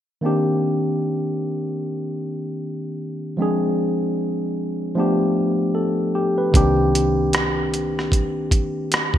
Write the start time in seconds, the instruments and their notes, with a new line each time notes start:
0.21 tine electric piano D#3 A#3 C4 D4
0.26 tine electric piano G4
3.37 tine electric piano F3 G#3 C4 D4
3.42 tine electric piano G#4
4.95 tine electric piano F3 A3 B3 D4
5.00 tine electric piano G4
5.75 tine electric piano A4
6.15 tine electric piano G4
6.38 tine electric piano B4
6.52 fingered electric bass C2, tine electric piano D#3 A#3 C4 D4, kick, closed hi-hat
6.57 tine electric piano G4
6.95 closed hi-hat
7.33 cross-stick, closed hi-hat
7.74 closed hi-hat
7.99 cross-stick
8.12 kick, closed hi-hat
8.51 kick, closed hi-hat
8.92 cross-stick, closed hi-hat
9.14 kick